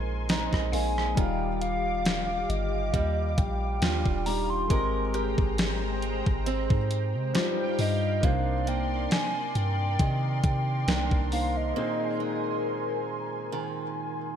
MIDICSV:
0, 0, Header, 1, 8, 480
1, 0, Start_track
1, 0, Key_signature, -3, "major"
1, 0, Tempo, 882353
1, 638, Time_signature, 4, 2, 24, 8
1, 7812, End_track
2, 0, Start_track
2, 0, Title_t, "Soft synth lead"
2, 0, Program_c, 0, 80
2, 160, Note_on_c, 0, 82, 90
2, 237, Note_off_c, 0, 82, 0
2, 401, Note_on_c, 0, 80, 99
2, 637, Note_on_c, 0, 79, 100
2, 645, Note_off_c, 0, 80, 0
2, 875, Note_off_c, 0, 79, 0
2, 878, Note_on_c, 0, 77, 108
2, 1357, Note_on_c, 0, 75, 104
2, 1365, Note_off_c, 0, 77, 0
2, 1838, Note_on_c, 0, 79, 111
2, 1847, Note_off_c, 0, 75, 0
2, 2318, Note_on_c, 0, 82, 108
2, 2326, Note_off_c, 0, 79, 0
2, 2447, Note_on_c, 0, 84, 111
2, 2456, Note_off_c, 0, 82, 0
2, 2927, Note_off_c, 0, 84, 0
2, 4005, Note_on_c, 0, 72, 97
2, 4225, Note_off_c, 0, 72, 0
2, 4246, Note_on_c, 0, 75, 98
2, 4485, Note_on_c, 0, 77, 115
2, 4493, Note_off_c, 0, 75, 0
2, 4725, Note_on_c, 0, 79, 107
2, 4733, Note_off_c, 0, 77, 0
2, 4961, Note_off_c, 0, 79, 0
2, 4964, Note_on_c, 0, 80, 110
2, 5202, Note_on_c, 0, 79, 124
2, 5210, Note_off_c, 0, 80, 0
2, 5679, Note_off_c, 0, 79, 0
2, 5682, Note_on_c, 0, 79, 119
2, 6138, Note_off_c, 0, 79, 0
2, 6162, Note_on_c, 0, 77, 94
2, 6293, Note_on_c, 0, 75, 93
2, 6301, Note_off_c, 0, 77, 0
2, 6770, Note_off_c, 0, 75, 0
2, 7812, End_track
3, 0, Start_track
3, 0, Title_t, "Analog synth pad"
3, 0, Program_c, 1, 89
3, 0, Note_on_c, 1, 70, 81
3, 0, Note_on_c, 1, 80, 74
3, 0, Note_on_c, 1, 84, 90
3, 616, Note_off_c, 1, 70, 0
3, 616, Note_off_c, 1, 84, 0
3, 617, Note_off_c, 1, 80, 0
3, 635, Note_on_c, 1, 86, 94
3, 636, Note_on_c, 1, 77, 77
3, 637, Note_on_c, 1, 67, 84
3, 2537, Note_off_c, 1, 77, 0
3, 2537, Note_off_c, 1, 86, 0
3, 2538, Note_off_c, 1, 67, 0
3, 2553, Note_on_c, 1, 79, 75
3, 2554, Note_on_c, 1, 72, 76
3, 2555, Note_on_c, 1, 56, 87
3, 2555, Note_on_c, 1, 82, 87
3, 3981, Note_off_c, 1, 72, 0
3, 3981, Note_off_c, 1, 79, 0
3, 3982, Note_off_c, 1, 56, 0
3, 3982, Note_off_c, 1, 82, 0
3, 3996, Note_on_c, 1, 67, 75
3, 3996, Note_on_c, 1, 79, 84
3, 3997, Note_on_c, 1, 77, 71
3, 4472, Note_off_c, 1, 67, 0
3, 4472, Note_off_c, 1, 77, 0
3, 4472, Note_off_c, 1, 79, 0
3, 4477, Note_on_c, 1, 70, 83
3, 4478, Note_on_c, 1, 74, 80
3, 4478, Note_on_c, 1, 84, 96
3, 6379, Note_off_c, 1, 74, 0
3, 6399, Note_on_c, 1, 80, 75
3, 7812, Note_off_c, 1, 70, 0
3, 7812, Note_off_c, 1, 80, 0
3, 7812, Note_off_c, 1, 84, 0
3, 7812, End_track
4, 0, Start_track
4, 0, Title_t, "Synth pluck"
4, 0, Program_c, 2, 84
4, 0, Note_on_c, 2, 72, 81
4, 393, Note_on_c, 2, 77, 75
4, 492, Note_off_c, 2, 72, 0
4, 854, Note_off_c, 2, 77, 0
4, 2798, Note_on_c, 2, 70, 65
4, 4002, Note_on_c, 2, 65, 72
4, 4216, Note_off_c, 2, 70, 0
4, 4698, Note_off_c, 2, 65, 0
4, 7812, End_track
5, 0, Start_track
5, 0, Title_t, "Grand piano"
5, 0, Program_c, 3, 0
5, 0, Control_c, 3, 64, 127
5, 0, Note_on_c, 3, 58, 67
5, 0, Note_on_c, 3, 63, 64
5, 0, Note_on_c, 3, 68, 61
5, 0, Note_on_c, 3, 72, 74
5, 369, Note_off_c, 3, 58, 0
5, 374, Note_off_c, 3, 63, 0
5, 379, Note_off_c, 3, 68, 0
5, 384, Note_off_c, 3, 72, 0
5, 393, Note_on_c, 3, 58, 48
5, 397, Note_on_c, 3, 63, 46
5, 403, Note_on_c, 3, 68, 44
5, 408, Note_on_c, 3, 75, 53
5, 625, Note_on_c, 3, 55, 70
5, 627, Note_off_c, 3, 63, 0
5, 635, Note_off_c, 3, 58, 0
5, 635, Note_on_c, 3, 63, 60
5, 640, Note_off_c, 3, 68, 0
5, 643, Note_off_c, 3, 75, 0
5, 644, Control_c, 3, 64, 0
5, 645, Note_on_c, 3, 65, 61
5, 655, Note_on_c, 3, 77, 76
5, 737, Control_c, 3, 64, 127
5, 2290, Note_off_c, 3, 55, 0
5, 2295, Note_off_c, 3, 63, 0
5, 2300, Note_off_c, 3, 65, 0
5, 2305, Note_off_c, 3, 77, 0
5, 2313, Note_on_c, 3, 55, 50
5, 2318, Note_on_c, 3, 63, 46
5, 2322, Note_on_c, 3, 65, 46
5, 2328, Note_on_c, 3, 67, 57
5, 2544, Note_on_c, 3, 56, 66
5, 2554, Note_on_c, 3, 60, 63
5, 2555, Note_off_c, 3, 55, 0
5, 2557, Note_off_c, 3, 67, 0
5, 2558, Note_off_c, 3, 63, 0
5, 2560, Note_off_c, 3, 65, 0
5, 2565, Control_c, 3, 64, 0
5, 2565, Note_on_c, 3, 67, 63
5, 2574, Note_on_c, 3, 70, 75
5, 2651, Control_c, 3, 64, 127
5, 3969, Note_off_c, 3, 56, 0
5, 3974, Note_off_c, 3, 60, 0
5, 3980, Note_off_c, 3, 67, 0
5, 3984, Note_off_c, 3, 70, 0
5, 3991, Note_on_c, 3, 55, 73
5, 3996, Note_on_c, 3, 63, 66
5, 4001, Note_on_c, 3, 65, 67
5, 4005, Control_c, 3, 64, 0
5, 4006, Note_on_c, 3, 67, 78
5, 4111, Control_c, 3, 64, 127
5, 4464, Note_on_c, 3, 58, 69
5, 4474, Note_off_c, 3, 55, 0
5, 4474, Note_on_c, 3, 62, 65
5, 4476, Note_off_c, 3, 63, 0
5, 4479, Note_off_c, 3, 65, 0
5, 4482, Note_off_c, 3, 67, 0
5, 4484, Control_c, 3, 64, 0
5, 4485, Note_on_c, 3, 63, 61
5, 4495, Note_on_c, 3, 72, 78
5, 4588, Control_c, 3, 64, 127
5, 6129, Note_off_c, 3, 58, 0
5, 6134, Note_off_c, 3, 62, 0
5, 6139, Note_off_c, 3, 63, 0
5, 6144, Note_off_c, 3, 72, 0
5, 6152, Note_on_c, 3, 58, 50
5, 6156, Note_on_c, 3, 62, 45
5, 6162, Note_on_c, 3, 63, 46
5, 6166, Note_on_c, 3, 72, 54
5, 6377, Note_off_c, 3, 58, 0
5, 6385, Note_on_c, 3, 58, 70
5, 6386, Note_off_c, 3, 62, 0
5, 6394, Note_on_c, 3, 62, 51
5, 6400, Note_off_c, 3, 63, 0
5, 6402, Note_off_c, 3, 72, 0
5, 6405, Note_on_c, 3, 68, 62
5, 6406, Control_c, 3, 64, 0
5, 6415, Note_on_c, 3, 72, 78
5, 6430, Note_on_c, 3, 63, 63
5, 6434, Note_off_c, 3, 62, 0
5, 6486, Control_c, 3, 64, 127
5, 7810, Note_off_c, 3, 58, 0
5, 7812, Note_off_c, 3, 63, 0
5, 7812, Note_off_c, 3, 68, 0
5, 7812, Note_off_c, 3, 72, 0
5, 7812, End_track
6, 0, Start_track
6, 0, Title_t, "Steel-string acoustic guitar"
6, 0, Program_c, 4, 25
6, 0, Note_on_c, 4, 46, 87
6, 0, Note_on_c, 4, 56, 69
6, 0, Note_on_c, 4, 60, 67
6, 0, Note_on_c, 4, 63, 72
6, 151, Note_off_c, 4, 56, 0
6, 154, Note_off_c, 4, 60, 0
6, 157, Note_on_c, 4, 56, 63
6, 160, Note_on_c, 4, 60, 63
6, 162, Note_off_c, 4, 63, 0
6, 164, Note_on_c, 4, 63, 65
6, 638, Note_off_c, 4, 46, 0
6, 639, Note_off_c, 4, 63, 0
6, 639, Note_on_c, 4, 51, 81
6, 641, Note_on_c, 4, 65, 70
6, 689, Note_off_c, 4, 56, 0
6, 691, Note_off_c, 4, 60, 0
6, 1600, Note_on_c, 4, 55, 74
6, 2076, Note_off_c, 4, 55, 0
6, 2079, Note_on_c, 4, 55, 63
6, 2080, Note_off_c, 4, 65, 0
6, 2083, Note_on_c, 4, 62, 65
6, 2086, Note_on_c, 4, 65, 70
6, 2556, Note_off_c, 4, 55, 0
6, 2558, Note_off_c, 4, 51, 0
6, 2558, Note_on_c, 4, 56, 85
6, 2560, Note_on_c, 4, 70, 68
6, 2612, Note_off_c, 4, 62, 0
6, 2614, Note_off_c, 4, 65, 0
6, 2798, Note_on_c, 4, 67, 65
6, 3517, Note_on_c, 4, 60, 74
6, 3997, Note_on_c, 4, 43, 83
6, 4049, Note_off_c, 4, 60, 0
6, 4050, Note_off_c, 4, 56, 0
6, 4051, Note_off_c, 4, 70, 0
6, 4479, Note_on_c, 4, 48, 84
6, 4480, Note_off_c, 4, 67, 0
6, 4482, Note_on_c, 4, 62, 76
6, 4529, Note_off_c, 4, 43, 0
6, 4720, Note_on_c, 4, 58, 71
6, 5438, Note_on_c, 4, 51, 76
6, 5916, Note_off_c, 4, 51, 0
6, 5917, Note_off_c, 4, 62, 0
6, 5918, Note_on_c, 4, 51, 63
6, 5919, Note_off_c, 4, 58, 0
6, 5921, Note_on_c, 4, 58, 60
6, 5924, Note_on_c, 4, 62, 68
6, 6395, Note_off_c, 4, 48, 0
6, 6398, Note_off_c, 4, 62, 0
6, 6398, Note_on_c, 4, 46, 86
6, 6400, Note_on_c, 4, 60, 71
6, 6635, Note_off_c, 4, 58, 0
6, 6637, Note_on_c, 4, 56, 66
6, 7355, Note_off_c, 4, 51, 0
6, 7357, Note_on_c, 4, 51, 74
6, 7812, Note_off_c, 4, 46, 0
6, 7812, Note_off_c, 4, 51, 0
6, 7812, Note_off_c, 4, 56, 0
6, 7812, Note_off_c, 4, 60, 0
6, 7812, End_track
7, 0, Start_track
7, 0, Title_t, "808-style bass"
7, 0, Program_c, 5, 38
7, 0, Note_on_c, 5, 34, 100
7, 268, Note_off_c, 5, 34, 0
7, 287, Note_on_c, 5, 34, 97
7, 393, Note_off_c, 5, 34, 0
7, 396, Note_on_c, 5, 34, 110
7, 627, Note_off_c, 5, 34, 0
7, 638, Note_on_c, 5, 27, 102
7, 1336, Note_off_c, 5, 27, 0
7, 1357, Note_on_c, 5, 31, 101
7, 1588, Note_off_c, 5, 31, 0
7, 1598, Note_on_c, 5, 39, 111
7, 1828, Note_off_c, 5, 39, 0
7, 1838, Note_on_c, 5, 34, 108
7, 2068, Note_off_c, 5, 34, 0
7, 2077, Note_on_c, 5, 39, 114
7, 2202, Note_off_c, 5, 39, 0
7, 2206, Note_on_c, 5, 27, 99
7, 2543, Note_off_c, 5, 27, 0
7, 2557, Note_on_c, 5, 32, 107
7, 2912, Note_off_c, 5, 32, 0
7, 2927, Note_on_c, 5, 32, 98
7, 3388, Note_off_c, 5, 32, 0
7, 3409, Note_on_c, 5, 32, 103
7, 3638, Note_off_c, 5, 32, 0
7, 3647, Note_on_c, 5, 44, 102
7, 3886, Note_on_c, 5, 48, 99
7, 3895, Note_off_c, 5, 44, 0
7, 3992, Note_off_c, 5, 48, 0
7, 4237, Note_on_c, 5, 43, 102
7, 4468, Note_off_c, 5, 43, 0
7, 4477, Note_on_c, 5, 36, 108
7, 4938, Note_off_c, 5, 36, 0
7, 5197, Note_on_c, 5, 43, 103
7, 5428, Note_off_c, 5, 43, 0
7, 5437, Note_on_c, 5, 48, 104
7, 5668, Note_off_c, 5, 48, 0
7, 5678, Note_on_c, 5, 48, 107
7, 5908, Note_off_c, 5, 48, 0
7, 5917, Note_on_c, 5, 36, 106
7, 6042, Note_off_c, 5, 36, 0
7, 6046, Note_on_c, 5, 36, 101
7, 6383, Note_off_c, 5, 36, 0
7, 7812, End_track
8, 0, Start_track
8, 0, Title_t, "Drums"
8, 158, Note_on_c, 9, 42, 69
8, 162, Note_on_c, 9, 38, 112
8, 213, Note_off_c, 9, 42, 0
8, 216, Note_off_c, 9, 38, 0
8, 287, Note_on_c, 9, 36, 87
8, 294, Note_on_c, 9, 37, 97
8, 341, Note_off_c, 9, 36, 0
8, 348, Note_off_c, 9, 37, 0
8, 398, Note_on_c, 9, 46, 67
8, 453, Note_off_c, 9, 46, 0
8, 533, Note_on_c, 9, 37, 75
8, 588, Note_off_c, 9, 37, 0
8, 638, Note_on_c, 9, 36, 109
8, 639, Note_on_c, 9, 42, 71
8, 693, Note_off_c, 9, 36, 0
8, 693, Note_off_c, 9, 42, 0
8, 878, Note_on_c, 9, 42, 67
8, 933, Note_off_c, 9, 42, 0
8, 1118, Note_on_c, 9, 42, 75
8, 1122, Note_on_c, 9, 38, 108
8, 1172, Note_off_c, 9, 42, 0
8, 1177, Note_off_c, 9, 38, 0
8, 1359, Note_on_c, 9, 42, 59
8, 1413, Note_off_c, 9, 42, 0
8, 1598, Note_on_c, 9, 36, 96
8, 1598, Note_on_c, 9, 42, 71
8, 1652, Note_off_c, 9, 36, 0
8, 1652, Note_off_c, 9, 42, 0
8, 1837, Note_on_c, 9, 42, 68
8, 1838, Note_on_c, 9, 36, 109
8, 1892, Note_off_c, 9, 42, 0
8, 1893, Note_off_c, 9, 36, 0
8, 2077, Note_on_c, 9, 42, 71
8, 2081, Note_on_c, 9, 38, 112
8, 2132, Note_off_c, 9, 42, 0
8, 2135, Note_off_c, 9, 38, 0
8, 2206, Note_on_c, 9, 36, 96
8, 2260, Note_off_c, 9, 36, 0
8, 2318, Note_on_c, 9, 46, 75
8, 2373, Note_off_c, 9, 46, 0
8, 2558, Note_on_c, 9, 36, 110
8, 2558, Note_on_c, 9, 42, 75
8, 2612, Note_off_c, 9, 36, 0
8, 2612, Note_off_c, 9, 42, 0
8, 2797, Note_on_c, 9, 42, 65
8, 2851, Note_off_c, 9, 42, 0
8, 2927, Note_on_c, 9, 36, 104
8, 2981, Note_off_c, 9, 36, 0
8, 3037, Note_on_c, 9, 42, 73
8, 3042, Note_on_c, 9, 38, 109
8, 3092, Note_off_c, 9, 42, 0
8, 3096, Note_off_c, 9, 38, 0
8, 3277, Note_on_c, 9, 42, 62
8, 3332, Note_off_c, 9, 42, 0
8, 3408, Note_on_c, 9, 36, 97
8, 3462, Note_off_c, 9, 36, 0
8, 3516, Note_on_c, 9, 42, 73
8, 3571, Note_off_c, 9, 42, 0
8, 3646, Note_on_c, 9, 36, 100
8, 3701, Note_off_c, 9, 36, 0
8, 3757, Note_on_c, 9, 42, 66
8, 3812, Note_off_c, 9, 42, 0
8, 3996, Note_on_c, 9, 42, 75
8, 4000, Note_on_c, 9, 38, 112
8, 4051, Note_off_c, 9, 42, 0
8, 4054, Note_off_c, 9, 38, 0
8, 4236, Note_on_c, 9, 46, 71
8, 4290, Note_off_c, 9, 46, 0
8, 4478, Note_on_c, 9, 36, 109
8, 4478, Note_on_c, 9, 42, 69
8, 4532, Note_off_c, 9, 36, 0
8, 4532, Note_off_c, 9, 42, 0
8, 4718, Note_on_c, 9, 42, 66
8, 4772, Note_off_c, 9, 42, 0
8, 4956, Note_on_c, 9, 42, 73
8, 4961, Note_on_c, 9, 38, 109
8, 5011, Note_off_c, 9, 42, 0
8, 5016, Note_off_c, 9, 38, 0
8, 5197, Note_on_c, 9, 42, 60
8, 5251, Note_off_c, 9, 42, 0
8, 5437, Note_on_c, 9, 36, 94
8, 5437, Note_on_c, 9, 42, 73
8, 5491, Note_off_c, 9, 42, 0
8, 5492, Note_off_c, 9, 36, 0
8, 5677, Note_on_c, 9, 42, 65
8, 5678, Note_on_c, 9, 36, 108
8, 5731, Note_off_c, 9, 42, 0
8, 5732, Note_off_c, 9, 36, 0
8, 5918, Note_on_c, 9, 42, 73
8, 5921, Note_on_c, 9, 38, 107
8, 5972, Note_off_c, 9, 42, 0
8, 5976, Note_off_c, 9, 38, 0
8, 6046, Note_on_c, 9, 36, 90
8, 6100, Note_off_c, 9, 36, 0
8, 6158, Note_on_c, 9, 46, 70
8, 6213, Note_off_c, 9, 46, 0
8, 7812, End_track
0, 0, End_of_file